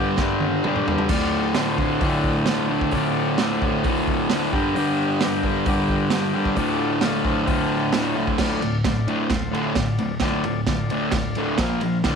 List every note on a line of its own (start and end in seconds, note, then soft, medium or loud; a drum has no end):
0.00 0.17 G2 medium
0.00 0.19 D3 medium
0.00 0.20 G3 medium
0.00 0.11 G4 loud
0.00 0.11 A#4 medium
0.00 0.11 D5 loud
0.17 0.63 G2 medium
0.17 0.64 D3 medium
0.17 0.56 G4 medium
0.17 0.56 A#4 medium
0.17 0.57 E5 medium
0.17 kick loud
0.17 snare medium
0.21 0.66 G3 medium
0.40 high tom medium
0.64 1.08 G2 loud
0.64 0.90 D3 loud
0.64 0.86 G3 loud
0.64 1.04 D5 medium
0.64 mid tom medium
0.69 1.05 G4 medium
0.69 1.04 A#4 medium
0.76 mid tom medium
0.88 1.11 D3 medium
0.88 1.09 G3 medium
0.88 floor tom loud
0.98 floor tom loud
1.09 1.55 D2 medium
1.09 1.56 A2 loud
1.09 1.48 F4 loud
1.09 1.48 A4 loud
1.09 1.48 D5 loud
1.09 kick loud
1.09 open hi-hat medium
1.09 crash loud
1.13 1.58 D3 loud
1.54 2.00 D2 medium
1.54 1.80 A2 medium
1.54 1.93 F4 medium
1.54 1.94 A4 medium
1.54 1.94 C5 loud
1.54 snare loud
1.54 open hi-hat medium
1.59 1.77 D3 medium
1.78 2.02 A2 medium
1.78 2.03 D3 medium
1.78 kick medium
1.98 2.45 D2 medium
1.98 2.38 F4 medium
1.98 2.38 A4 medium
1.98 2.38 D5 loud
1.98 kick loud
1.98 open hi-hat medium
2.03 2.46 A2 medium
2.03 2.48 D3 medium
2.24 kick medium
2.46 2.91 D2 medium
2.46 2.70 A2 loud
2.46 2.67 D3 loud
2.46 2.86 F4 medium
2.46 2.86 A4 medium
2.46 snare loud
2.46 open hi-hat medium
2.50 2.86 D5 loud
2.68 2.93 A2 medium
2.68 2.94 D3 medium
2.81 kick loud
2.91 3.37 D2 medium
2.91 3.39 A2 medium
2.91 3.32 F4 loud
2.91 3.32 A4 loud
2.91 3.31 D5 loud
2.91 kick loud
2.91 open hi-hat medium
2.96 3.40 D3 loud
3.38 3.84 D2 medium
3.38 3.64 A2 medium
3.38 3.62 D3 medium
3.38 3.77 F4 medium
3.38 3.77 A4 medium
3.38 3.77 D5 loud
3.38 snare loud
3.38 open hi-hat medium
3.62 3.86 A2 medium
3.62 3.87 D3 medium
3.62 kick loud
3.84 4.29 D2 medium
3.84 4.30 A2 medium
3.84 4.22 F4 medium
3.84 4.22 A4 medium
3.84 4.23 E5 loud
3.84 kick loud
3.84 open hi-hat medium
3.88 4.32 D3 medium
4.08 kick medium
4.30 4.51 D2 loud
4.30 4.52 A2 loud
4.30 4.52 D3 loud
4.30 4.54 F4 medium
4.30 4.54 A4 medium
4.30 4.54 D5 medium
4.30 snare loud
4.30 open hi-hat medium
4.53 4.74 G2 medium
4.53 4.75 D3 medium
4.53 4.77 G3 medium
4.53 5.11 G4 medium
4.53 5.11 A#4 medium
4.53 5.11 D5 loud
4.53 kick loud
4.75 5.20 G2 loud
4.75 5.22 D3 loud
4.75 5.23 G3 loud
4.75 open hi-hat medium
5.21 5.65 G2 medium
5.21 5.45 D3 medium
5.21 5.43 G3 medium
5.21 5.59 G4 medium
5.21 5.60 A#4 medium
5.21 5.59 D5 loud
5.21 snare loud
5.21 open hi-hat medium
5.43 5.67 D3 medium
5.43 5.68 G3 medium
5.43 kick medium
5.66 6.10 G2 medium
5.66 6.11 D3 medium
5.66 6.12 G3 medium
5.66 6.05 G4 medium
5.66 6.05 A#4 medium
5.66 6.06 D5 loud
5.66 kick loud
5.66 open hi-hat medium
5.89 kick medium
6.10 6.55 G2 loud
6.10 6.35 D3 loud
6.10 6.33 G3 loud
6.10 6.50 G4 medium
6.10 6.50 A#4 medium
6.10 6.51 D5 loud
6.10 snare loud
6.10 open hi-hat medium
6.34 6.57 D3 medium
6.34 6.56 G3 medium
6.45 kick loud
6.56 7.01 D2 medium
6.56 7.02 A2 medium
6.56 7.04 D3 loud
6.56 6.94 F4 loud
6.56 6.94 A4 loud
6.56 6.94 D5 loud
6.56 kick loud
6.56 open hi-hat medium
7.01 7.45 D2 medium
7.01 7.25 A2 medium
7.01 7.23 D3 medium
7.01 7.40 F4 medium
7.01 7.40 A4 medium
7.01 7.40 F5 loud
7.01 snare loud
7.01 open hi-hat medium
7.24 7.47 A2 medium
7.24 7.48 D3 medium
7.24 kick medium
7.46 7.91 D2 medium
7.46 7.92 A2 medium
7.46 7.94 D3 medium
7.46 7.86 F4 medium
7.46 7.86 A4 medium
7.46 7.86 F5 loud
7.46 kick loud
7.46 open hi-hat medium
7.91 8.37 D2 loud
7.91 8.18 A2 loud
7.91 8.14 D3 loud
7.91 8.31 F4 medium
7.91 8.30 A4 medium
7.91 8.31 E5 medium
7.91 snare loud
7.91 open hi-hat medium
8.15 8.38 A2 medium
8.15 8.37 D3 medium
8.27 kick medium
8.38 8.60 D2 medium
8.38 8.61 A2 medium
8.38 8.61 D3 medium
8.38 8.77 F4 loud
8.38 8.78 A4 loud
8.38 8.78 D5 loud
8.38 kick loud
8.38 snare loud
8.38 crash loud
8.62 8.82 D2 medium
8.62 8.83 A2 medium
8.62 ride medium
8.84 9.05 D2 medium
8.84 9.06 A2 medium
8.84 9.23 F4 medium
8.84 9.24 A4 medium
8.84 9.24 D5 medium
8.84 kick loud
8.84 snare loud
8.84 ride medium
9.07 9.29 D2 loud
9.07 9.29 A2 medium
9.07 9.30 D3 loud
9.07 ride medium
9.30 9.50 D2 medium
9.30 9.51 A2 medium
9.30 9.69 F4 medium
9.30 9.69 A4 medium
9.30 9.69 C5 loud
9.30 kick loud
9.30 snare loud
9.30 ride medium
9.52 9.74 D2 medium
9.52 9.75 A2 medium
9.52 9.75 D3 loud
9.52 ride medium
9.75 9.96 D2 medium
9.75 9.97 A2 medium
9.75 10.14 F4 medium
9.75 10.15 A4 medium
9.75 10.15 D5 medium
9.75 kick loud
9.75 snare loud
9.75 ride medium
9.98 10.20 D2 medium
9.98 10.20 A2 medium
9.98 ride medium
10.20 10.43 D2 medium
10.20 10.43 A2 medium
10.20 10.44 D3 loud
10.20 10.60 F4 loud
10.20 kick loud
10.20 snare loud
10.20 ride medium
10.24 10.61 A4 loud
10.24 10.61 D5 loud
10.44 10.66 D2 medium
10.44 10.66 A2 medium
10.44 ride medium
10.67 10.89 D2 medium
10.67 10.89 A2 medium
10.67 11.06 F4 medium
10.67 11.06 A4 medium
10.67 11.06 D5 loud
10.67 kick loud
10.67 snare loud
10.67 ride medium
10.90 11.12 D2 medium
10.90 11.13 A2 loud
10.90 11.13 D3 loud
10.90 ride medium
11.11 11.35 D2 medium
11.11 11.35 A2 medium
11.11 11.52 D5 medium
11.11 kick loud
11.11 snare loud
11.11 ride loud
11.16 11.52 F4 medium
11.16 11.53 A4 medium
11.35 11.58 D2 medium
11.35 11.58 A2 medium
11.35 11.59 D3 medium
11.35 ride medium
11.58 11.80 A#2 loud
11.58 11.81 F3 loud
11.58 11.81 A#3 loud
11.58 kick loud
11.58 snare loud
11.58 ride loud
11.62 11.99 F4 medium
11.62 11.99 A#4 medium
11.62 11.99 F5 medium
11.81 12.03 A#2 medium
11.81 12.03 F3 medium
11.81 ride medium
12.04 12.15 D2 medium
12.04 12.15 A2 medium
12.04 12.15 D3 loud
12.04 12.15 A4 loud
12.04 12.15 D5 loud
12.04 12.15 F5 loud
12.04 kick loud
12.04 snare loud
12.04 ride loud